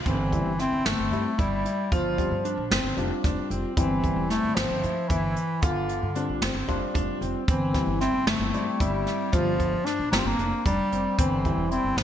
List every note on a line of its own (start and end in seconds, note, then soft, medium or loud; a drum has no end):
0.05 0.43 G1 medium
0.05 0.61 E3 medium
0.05 0.49 C4 medium
0.05 kick loud
0.05 closed hi-hat medium
0.32 0.51 G3 medium
0.32 0.51 C4 medium
0.32 0.52 E4 medium
0.32 kick medium
0.32 closed hi-hat medium
0.46 0.70 G1 medium
0.59 0.87 C4 medium
0.59 0.81 E4 medium
0.59 snare soft
0.59 closed hi-hat medium
0.72 0.85 G1 medium
0.85 0.98 G1 medium
0.85 1.41 A3 medium
0.85 1.07 C4 medium
0.85 snare loud
0.85 closed hi-hat medium
0.99 1.11 G1 medium
1.12 1.24 G2 medium
1.12 1.31 G3 medium
1.12 1.31 C4 medium
1.12 1.34 E4 medium
1.12 1.31 E4 medium
1.12 closed hi-hat medium
1.38 1.63 G1 medium
1.38 1.92 G3 medium
1.38 1.60 E4 medium
1.38 kick loud
1.38 closed hi-hat medium
1.65 1.87 E4 medium
1.65 closed hi-hat medium
1.92 2.33 G1 medium
1.92 2.68 F3 medium
1.92 2.36 F4 medium
1.92 kick loud
1.92 closed hi-hat medium
2.17 2.55 G3 medium
2.17 2.55 C4 medium
2.17 2.55 F4 medium
2.17 kick medium
2.17 closed hi-hat medium
2.31 2.56 G2 medium
2.45 2.67 D4 medium
2.45 closed hi-hat medium
2.58 2.70 A#1 medium
2.71 2.83 G1 medium
2.71 2.93 C4 medium
2.71 snare loud
2.71 closed hi-hat medium
2.84 2.96 G1 medium
2.96 3.10 F1 medium
2.96 3.71 G3 medium
2.96 3.72 C4 medium
2.96 3.20 D4 medium
2.96 3.72 F4 medium
2.96 closed hi-hat soft
3.24 3.36 F1 medium
3.24 3.46 D4 medium
3.24 kick loud
3.24 snare soft
3.24 closed hi-hat medium
3.50 3.63 F1 medium
3.50 3.73 C4 medium
3.50 closed hi-hat medium
3.77 4.14 G1 medium
3.77 4.31 E3 medium
3.77 4.51 G3 medium
3.77 4.51 C4 medium
3.77 4.22 C4 medium
3.77 4.51 E4 medium
3.77 kick loud
3.77 closed hi-hat medium
4.04 kick medium
4.04 closed hi-hat medium
4.16 4.41 E1 medium
4.30 4.57 A3 medium
4.30 4.53 E4 medium
4.30 snare soft
4.30 closed hi-hat medium
4.43 4.56 G1 medium
4.55 4.69 G1 medium
4.55 5.10 F3 medium
4.55 4.79 C4 medium
4.55 snare loud
4.55 closed hi-hat medium
4.70 4.82 G1 medium
4.83 4.96 G2 medium
4.83 5.05 E4 medium
4.83 closed hi-hat medium
5.09 5.34 G1 medium
5.09 5.64 E3 medium
5.09 5.32 E4 medium
5.09 kick loud
5.09 closed hi-hat medium
5.36 closed hi-hat medium
5.62 6.04 G1 medium
5.62 6.42 D3 medium
5.62 6.07 F4 medium
5.62 kick loud
5.62 closed hi-hat medium
5.89 closed hi-hat medium
6.03 6.27 G2 medium
6.15 6.52 G3 medium
6.15 6.52 C4 medium
6.15 6.38 D4 medium
6.15 6.53 F4 medium
6.15 closed hi-hat medium
6.29 6.41 A#1 medium
6.42 6.54 G1 medium
6.42 6.64 C4 medium
6.42 snare loud
6.42 closed hi-hat medium
6.54 6.67 G1 medium
6.68 6.81 F1 medium
6.68 7.42 G3 medium
6.68 7.42 C4 medium
6.68 6.90 D4 medium
6.68 7.43 F4 medium
6.68 kick medium
6.68 closed hi-hat medium
6.94 7.07 F1 medium
6.94 7.16 D4 medium
6.94 kick medium
6.94 closed hi-hat medium
7.21 7.34 F1 medium
7.21 7.43 C4 medium
7.21 closed hi-hat medium
7.48 7.85 G1 medium
7.48 7.97 E3 medium
7.48 7.92 C4 medium
7.48 kick loud
7.48 closed hi-hat medium
7.73 8.48 G3 medium
7.73 8.48 C4 medium
7.73 8.48 E4 medium
7.73 kick medium
7.73 snare soft
7.73 closed hi-hat medium
7.87 8.12 G1 medium
8.00 8.25 C4 medium
8.00 8.23 E4 medium
8.00 snare soft
8.00 closed hi-hat medium
8.13 8.26 G1 medium
8.26 8.39 G1 medium
8.26 8.82 A3 medium
8.26 8.49 C4 medium
8.26 snare loud
8.26 closed hi-hat medium
8.39 8.52 G1 medium
8.53 8.66 G2 medium
8.53 9.28 G3 medium
8.53 9.28 C4 medium
8.53 8.76 E4 medium
8.53 9.28 G4 medium
8.53 closed hi-hat medium
8.80 9.05 G1 medium
8.80 9.35 G3 medium
8.80 9.02 E4 medium
8.80 kick loud
8.80 closed hi-hat medium
9.06 9.28 E4 medium
9.06 snare soft
9.06 closed hi-hat medium
9.32 9.74 G1 medium
9.32 9.87 F3 medium
9.32 9.51 G3 medium
9.32 9.51 C4 medium
9.32 9.76 F4 medium
9.32 9.52 F4 medium
9.32 kick loud
9.32 closed hi-hat medium
9.60 kick medium
9.60 closed hi-hat medium
9.73 9.97 G2 medium
9.85 10.08 D4 medium
9.85 10.11 D4 medium
9.85 snare soft
9.85 closed hi-hat medium
9.99 10.12 A#1 medium
10.11 10.25 G1 medium
10.11 10.31 G3 medium
10.11 10.20 A#3 loud
10.11 10.34 C4 medium
10.11 10.31 C4 medium
10.11 10.31 F4 medium
10.11 snare loud
10.11 closed hi-hat medium
10.18 10.28 C4 medium
10.25 10.38 G1 medium
10.25 10.65 A#3 medium
10.39 10.51 F1 medium
10.39 10.61 D4 medium
10.39 closed hi-hat medium
10.65 10.78 F1 medium
10.65 11.20 G3 medium
10.65 10.87 D4 medium
10.65 kick loud
10.65 closed hi-hat medium
10.92 11.04 F1 medium
10.92 11.14 C4 medium
10.92 closed hi-hat medium
11.18 11.55 G1 loud
11.18 11.72 E3 medium
11.18 11.62 C4 medium
11.18 kick loud
11.18 closed hi-hat medium
11.45 12.03 G3 medium
11.45 12.03 C4 medium
11.45 12.03 E4 medium
11.45 kick medium
11.45 closed hi-hat medium
11.58 11.82 E1 medium
11.71 11.99 C4 medium
11.71 11.93 E4 medium
11.71 closed hi-hat medium
11.84 11.96 G1 medium
11.97 12.03 G1 loud
11.97 12.03 F3 medium
11.97 12.03 C4 medium
11.97 snare loud
11.97 closed hi-hat medium